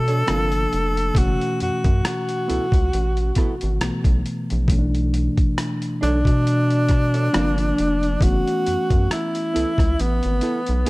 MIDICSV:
0, 0, Header, 1, 6, 480
1, 0, Start_track
1, 0, Tempo, 882353
1, 626, Time_signature, 4, 2, 24, 8
1, 5929, End_track
2, 0, Start_track
2, 0, Title_t, "Tenor saxophone"
2, 0, Program_c, 0, 66
2, 0, Note_on_c, 0, 69, 105
2, 642, Note_on_c, 0, 66, 86
2, 650, Note_off_c, 0, 69, 0
2, 874, Note_off_c, 0, 66, 0
2, 882, Note_on_c, 0, 66, 72
2, 1097, Note_off_c, 0, 66, 0
2, 1123, Note_on_c, 0, 66, 77
2, 2293, Note_off_c, 0, 66, 0
2, 3278, Note_on_c, 0, 62, 92
2, 4477, Note_on_c, 0, 66, 95
2, 4485, Note_off_c, 0, 62, 0
2, 4951, Note_off_c, 0, 66, 0
2, 4963, Note_on_c, 0, 64, 79
2, 5444, Note_on_c, 0, 59, 80
2, 5452, Note_off_c, 0, 64, 0
2, 5929, Note_off_c, 0, 59, 0
2, 5929, End_track
3, 0, Start_track
3, 0, Title_t, "Hollow-body jazz guitar"
3, 0, Program_c, 1, 26
3, 44, Note_on_c, 1, 73, 63
3, 48, Note_on_c, 1, 69, 54
3, 51, Note_on_c, 1, 62, 49
3, 115, Note_off_c, 1, 73, 0
3, 118, Note_off_c, 1, 69, 0
3, 119, Note_off_c, 1, 62, 0
3, 146, Note_on_c, 1, 60, 64
3, 152, Note_on_c, 1, 65, 66
3, 155, Note_on_c, 1, 70, 83
3, 269, Note_off_c, 1, 60, 0
3, 272, Note_off_c, 1, 65, 0
3, 273, Note_off_c, 1, 70, 0
3, 1348, Note_on_c, 1, 59, 51
3, 1354, Note_on_c, 1, 64, 60
3, 1357, Note_on_c, 1, 69, 57
3, 1443, Note_off_c, 1, 59, 0
3, 1446, Note_off_c, 1, 64, 0
3, 1447, Note_off_c, 1, 69, 0
3, 1830, Note_on_c, 1, 59, 52
3, 1835, Note_on_c, 1, 64, 62
3, 1839, Note_on_c, 1, 69, 60
3, 1924, Note_off_c, 1, 59, 0
3, 1926, Note_off_c, 1, 64, 0
3, 1928, Note_off_c, 1, 69, 0
3, 3269, Note_on_c, 1, 62, 59
3, 3276, Note_on_c, 1, 69, 67
3, 3279, Note_on_c, 1, 73, 62
3, 3363, Note_off_c, 1, 62, 0
3, 3367, Note_off_c, 1, 69, 0
3, 3368, Note_off_c, 1, 73, 0
3, 3885, Note_on_c, 1, 73, 59
3, 3890, Note_on_c, 1, 69, 53
3, 3894, Note_on_c, 1, 62, 50
3, 3956, Note_off_c, 1, 73, 0
3, 3959, Note_off_c, 1, 69, 0
3, 3961, Note_off_c, 1, 62, 0
3, 3987, Note_on_c, 1, 60, 71
3, 3991, Note_on_c, 1, 65, 69
3, 3996, Note_on_c, 1, 70, 78
3, 4109, Note_off_c, 1, 60, 0
3, 4111, Note_off_c, 1, 65, 0
3, 4113, Note_off_c, 1, 70, 0
3, 5188, Note_on_c, 1, 59, 47
3, 5193, Note_on_c, 1, 64, 50
3, 5198, Note_on_c, 1, 69, 61
3, 5283, Note_off_c, 1, 59, 0
3, 5285, Note_off_c, 1, 64, 0
3, 5288, Note_off_c, 1, 69, 0
3, 5667, Note_on_c, 1, 59, 60
3, 5671, Note_on_c, 1, 64, 55
3, 5675, Note_on_c, 1, 69, 67
3, 5762, Note_off_c, 1, 59, 0
3, 5764, Note_off_c, 1, 64, 0
3, 5766, Note_off_c, 1, 69, 0
3, 5905, Note_on_c, 1, 59, 75
3, 5911, Note_on_c, 1, 64, 75
3, 5929, Note_off_c, 1, 59, 0
3, 5929, Note_off_c, 1, 64, 0
3, 5929, End_track
4, 0, Start_track
4, 0, Title_t, "Reed electric piano"
4, 0, Program_c, 2, 4
4, 0, Control_c, 2, 64, 127
4, 0, Note_on_c, 2, 47, 57
4, 0, Note_on_c, 2, 52, 51
4, 0, Note_on_c, 2, 57, 53
4, 0, Note_on_c, 2, 62, 64
4, 119, Note_off_c, 2, 47, 0
4, 125, Note_off_c, 2, 52, 0
4, 130, Note_off_c, 2, 57, 0
4, 149, Note_on_c, 2, 48, 52
4, 152, Note_off_c, 2, 62, 0
4, 153, Control_c, 2, 64, 0
4, 154, Note_on_c, 2, 53, 50
4, 160, Note_on_c, 2, 58, 46
4, 164, Note_on_c, 2, 62, 62
4, 250, Control_c, 2, 64, 127
4, 619, Note_on_c, 2, 47, 54
4, 627, Note_off_c, 2, 48, 0
4, 629, Note_on_c, 2, 52, 51
4, 630, Note_off_c, 2, 53, 0
4, 633, Note_off_c, 2, 58, 0
4, 633, Control_c, 2, 64, 0
4, 635, Note_off_c, 2, 62, 0
4, 639, Note_on_c, 2, 57, 51
4, 650, Note_on_c, 2, 61, 60
4, 727, Control_c, 2, 64, 127
4, 2040, Note_off_c, 2, 47, 0
4, 2045, Note_off_c, 2, 52, 0
4, 2051, Note_off_c, 2, 57, 0
4, 2056, Note_off_c, 2, 61, 0
4, 2066, Note_on_c, 2, 47, 51
4, 2071, Note_on_c, 2, 52, 46
4, 2077, Note_on_c, 2, 57, 45
4, 2081, Note_on_c, 2, 59, 58
4, 2532, Note_off_c, 2, 47, 0
4, 2538, Note_on_c, 2, 47, 63
4, 2542, Note_off_c, 2, 52, 0
4, 2549, Note_on_c, 2, 52, 64
4, 2551, Note_off_c, 2, 57, 0
4, 2552, Control_c, 2, 64, 0
4, 2553, Note_off_c, 2, 59, 0
4, 2558, Note_on_c, 2, 57, 59
4, 2569, Note_on_c, 2, 61, 61
4, 2598, Note_off_c, 2, 61, 0
4, 2604, Note_on_c, 2, 62, 75
4, 2647, Control_c, 2, 64, 127
4, 3960, Note_off_c, 2, 47, 0
4, 3965, Note_off_c, 2, 52, 0
4, 3970, Note_off_c, 2, 57, 0
4, 3989, Note_on_c, 2, 48, 62
4, 3992, Control_c, 2, 64, 0
4, 3993, Note_off_c, 2, 62, 0
4, 3995, Note_on_c, 2, 53, 65
4, 3999, Note_on_c, 2, 58, 63
4, 4005, Note_on_c, 2, 62, 75
4, 4075, Control_c, 2, 64, 127
4, 4461, Note_on_c, 2, 59, 56
4, 4467, Note_off_c, 2, 48, 0
4, 4470, Note_off_c, 2, 53, 0
4, 4470, Note_on_c, 2, 52, 53
4, 4472, Note_off_c, 2, 58, 0
4, 4472, Control_c, 2, 64, 0
4, 4475, Note_off_c, 2, 62, 0
4, 4480, Note_on_c, 2, 57, 55
4, 4491, Note_on_c, 2, 61, 62
4, 4582, Control_c, 2, 64, 127
4, 5929, Note_off_c, 2, 52, 0
4, 5929, Note_off_c, 2, 57, 0
4, 5929, Note_off_c, 2, 59, 0
4, 5929, Note_off_c, 2, 61, 0
4, 5929, End_track
5, 0, Start_track
5, 0, Title_t, "Analog synth bass"
5, 0, Program_c, 3, 38
5, 0, Note_on_c, 3, 47, 93
5, 125, Note_off_c, 3, 47, 0
5, 160, Note_on_c, 3, 31, 102
5, 363, Note_off_c, 3, 31, 0
5, 399, Note_on_c, 3, 29, 72
5, 602, Note_off_c, 3, 29, 0
5, 632, Note_on_c, 3, 30, 94
5, 748, Note_off_c, 3, 30, 0
5, 880, Note_on_c, 3, 42, 49
5, 931, Note_off_c, 3, 42, 0
5, 1009, Note_on_c, 3, 42, 79
5, 1096, Note_off_c, 3, 42, 0
5, 1360, Note_on_c, 3, 37, 44
5, 1411, Note_off_c, 3, 37, 0
5, 1487, Note_on_c, 3, 37, 87
5, 1575, Note_off_c, 3, 37, 0
5, 1600, Note_on_c, 3, 33, 87
5, 1803, Note_off_c, 3, 33, 0
5, 1975, Note_on_c, 3, 32, 84
5, 2060, Note_off_c, 3, 32, 0
5, 2079, Note_on_c, 3, 35, 48
5, 2131, Note_off_c, 3, 35, 0
5, 2207, Note_on_c, 3, 35, 94
5, 2295, Note_off_c, 3, 35, 0
5, 2458, Note_on_c, 3, 34, 79
5, 2541, Note_off_c, 3, 34, 0
5, 2552, Note_on_c, 3, 35, 85
5, 2877, Note_off_c, 3, 35, 0
5, 3280, Note_on_c, 3, 35, 83
5, 3393, Note_off_c, 3, 35, 0
5, 3408, Note_on_c, 3, 47, 86
5, 3967, Note_off_c, 3, 47, 0
5, 4000, Note_on_c, 3, 31, 102
5, 4203, Note_off_c, 3, 31, 0
5, 4240, Note_on_c, 3, 29, 77
5, 4443, Note_off_c, 3, 29, 0
5, 4472, Note_on_c, 3, 30, 102
5, 4588, Note_off_c, 3, 30, 0
5, 4720, Note_on_c, 3, 42, 50
5, 4771, Note_off_c, 3, 42, 0
5, 4850, Note_on_c, 3, 42, 86
5, 4937, Note_off_c, 3, 42, 0
5, 5200, Note_on_c, 3, 37, 45
5, 5251, Note_off_c, 3, 37, 0
5, 5327, Note_on_c, 3, 37, 82
5, 5415, Note_off_c, 3, 37, 0
5, 5441, Note_on_c, 3, 33, 92
5, 5553, Note_off_c, 3, 33, 0
5, 5576, Note_on_c, 3, 32, 80
5, 5660, Note_off_c, 3, 32, 0
5, 5816, Note_on_c, 3, 35, 81
5, 5900, Note_off_c, 3, 35, 0
5, 5929, End_track
6, 0, Start_track
6, 0, Title_t, "Drums"
6, 42, Note_on_c, 9, 42, 44
6, 97, Note_off_c, 9, 42, 0
6, 150, Note_on_c, 9, 42, 63
6, 152, Note_on_c, 9, 37, 102
6, 204, Note_off_c, 9, 42, 0
6, 207, Note_off_c, 9, 37, 0
6, 282, Note_on_c, 9, 42, 42
6, 336, Note_off_c, 9, 42, 0
6, 395, Note_on_c, 9, 42, 47
6, 450, Note_off_c, 9, 42, 0
6, 529, Note_on_c, 9, 42, 42
6, 584, Note_off_c, 9, 42, 0
6, 625, Note_on_c, 9, 36, 89
6, 633, Note_on_c, 9, 42, 79
6, 679, Note_off_c, 9, 36, 0
6, 687, Note_off_c, 9, 42, 0
6, 769, Note_on_c, 9, 42, 38
6, 824, Note_off_c, 9, 42, 0
6, 873, Note_on_c, 9, 42, 51
6, 927, Note_off_c, 9, 42, 0
6, 1003, Note_on_c, 9, 36, 89
6, 1003, Note_on_c, 9, 42, 37
6, 1057, Note_off_c, 9, 42, 0
6, 1058, Note_off_c, 9, 36, 0
6, 1115, Note_on_c, 9, 37, 99
6, 1116, Note_on_c, 9, 42, 72
6, 1169, Note_off_c, 9, 37, 0
6, 1170, Note_off_c, 9, 42, 0
6, 1244, Note_on_c, 9, 42, 41
6, 1298, Note_off_c, 9, 42, 0
6, 1358, Note_on_c, 9, 42, 59
6, 1412, Note_off_c, 9, 42, 0
6, 1480, Note_on_c, 9, 36, 84
6, 1488, Note_on_c, 9, 42, 44
6, 1534, Note_off_c, 9, 36, 0
6, 1542, Note_off_c, 9, 42, 0
6, 1596, Note_on_c, 9, 42, 57
6, 1650, Note_off_c, 9, 42, 0
6, 1724, Note_on_c, 9, 42, 36
6, 1778, Note_off_c, 9, 42, 0
6, 1824, Note_on_c, 9, 42, 56
6, 1829, Note_on_c, 9, 36, 67
6, 1838, Note_on_c, 9, 37, 30
6, 1879, Note_off_c, 9, 42, 0
6, 1884, Note_off_c, 9, 36, 0
6, 1892, Note_off_c, 9, 37, 0
6, 1963, Note_on_c, 9, 42, 44
6, 2018, Note_off_c, 9, 42, 0
6, 2072, Note_on_c, 9, 42, 70
6, 2074, Note_on_c, 9, 37, 103
6, 2127, Note_off_c, 9, 42, 0
6, 2129, Note_off_c, 9, 37, 0
6, 2200, Note_on_c, 9, 36, 77
6, 2202, Note_on_c, 9, 42, 45
6, 2254, Note_off_c, 9, 36, 0
6, 2257, Note_off_c, 9, 42, 0
6, 2316, Note_on_c, 9, 42, 52
6, 2370, Note_off_c, 9, 42, 0
6, 2449, Note_on_c, 9, 42, 41
6, 2504, Note_off_c, 9, 42, 0
6, 2546, Note_on_c, 9, 36, 96
6, 2555, Note_on_c, 9, 42, 79
6, 2600, Note_off_c, 9, 36, 0
6, 2609, Note_off_c, 9, 42, 0
6, 2691, Note_on_c, 9, 42, 42
6, 2745, Note_off_c, 9, 42, 0
6, 2795, Note_on_c, 9, 42, 50
6, 2849, Note_off_c, 9, 42, 0
6, 2924, Note_on_c, 9, 36, 80
6, 2924, Note_on_c, 9, 42, 39
6, 2978, Note_off_c, 9, 36, 0
6, 2979, Note_off_c, 9, 42, 0
6, 3035, Note_on_c, 9, 37, 93
6, 3036, Note_on_c, 9, 42, 84
6, 3089, Note_off_c, 9, 37, 0
6, 3090, Note_off_c, 9, 42, 0
6, 3165, Note_on_c, 9, 42, 45
6, 3220, Note_off_c, 9, 42, 0
6, 3279, Note_on_c, 9, 42, 57
6, 3334, Note_off_c, 9, 42, 0
6, 3401, Note_on_c, 9, 36, 83
6, 3411, Note_on_c, 9, 42, 43
6, 3455, Note_off_c, 9, 36, 0
6, 3466, Note_off_c, 9, 42, 0
6, 3519, Note_on_c, 9, 42, 60
6, 3574, Note_off_c, 9, 42, 0
6, 3647, Note_on_c, 9, 42, 37
6, 3702, Note_off_c, 9, 42, 0
6, 3746, Note_on_c, 9, 42, 55
6, 3750, Note_on_c, 9, 36, 78
6, 3759, Note_on_c, 9, 37, 29
6, 3800, Note_off_c, 9, 42, 0
6, 3804, Note_off_c, 9, 36, 0
6, 3813, Note_off_c, 9, 37, 0
6, 3884, Note_on_c, 9, 42, 44
6, 3939, Note_off_c, 9, 42, 0
6, 3993, Note_on_c, 9, 42, 65
6, 3995, Note_on_c, 9, 37, 97
6, 4047, Note_off_c, 9, 42, 0
6, 4049, Note_off_c, 9, 37, 0
6, 4123, Note_on_c, 9, 42, 42
6, 4177, Note_off_c, 9, 42, 0
6, 4234, Note_on_c, 9, 42, 52
6, 4289, Note_off_c, 9, 42, 0
6, 4368, Note_on_c, 9, 42, 39
6, 4422, Note_off_c, 9, 42, 0
6, 4465, Note_on_c, 9, 36, 101
6, 4473, Note_on_c, 9, 42, 77
6, 4519, Note_off_c, 9, 36, 0
6, 4527, Note_off_c, 9, 42, 0
6, 4611, Note_on_c, 9, 42, 40
6, 4665, Note_off_c, 9, 42, 0
6, 4714, Note_on_c, 9, 42, 58
6, 4768, Note_off_c, 9, 42, 0
6, 4844, Note_on_c, 9, 36, 83
6, 4845, Note_on_c, 9, 42, 41
6, 4898, Note_off_c, 9, 36, 0
6, 4899, Note_off_c, 9, 42, 0
6, 4956, Note_on_c, 9, 37, 85
6, 4957, Note_on_c, 9, 42, 75
6, 5011, Note_off_c, 9, 37, 0
6, 5012, Note_off_c, 9, 42, 0
6, 5086, Note_on_c, 9, 42, 46
6, 5140, Note_off_c, 9, 42, 0
6, 5200, Note_on_c, 9, 42, 64
6, 5254, Note_off_c, 9, 42, 0
6, 5320, Note_on_c, 9, 36, 80
6, 5327, Note_on_c, 9, 37, 31
6, 5330, Note_on_c, 9, 42, 43
6, 5375, Note_off_c, 9, 36, 0
6, 5381, Note_off_c, 9, 37, 0
6, 5385, Note_off_c, 9, 42, 0
6, 5437, Note_on_c, 9, 42, 64
6, 5492, Note_off_c, 9, 42, 0
6, 5564, Note_on_c, 9, 42, 38
6, 5618, Note_off_c, 9, 42, 0
6, 5664, Note_on_c, 9, 42, 53
6, 5719, Note_off_c, 9, 42, 0
6, 5802, Note_on_c, 9, 42, 44
6, 5856, Note_off_c, 9, 42, 0
6, 5910, Note_on_c, 9, 42, 65
6, 5929, Note_off_c, 9, 42, 0
6, 5929, End_track
0, 0, End_of_file